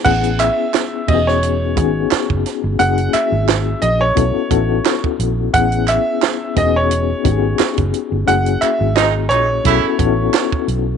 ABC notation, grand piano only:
X:1
M:4/4
L:1/16
Q:"Swing 16ths" 1/4=88
K:E
V:1 name="Grand piano"
f2 e4 d c6 z3 | f2 e4 d c6 z3 | f2 e4 d c6 z3 | f2 e2 d2 c8 z2 |]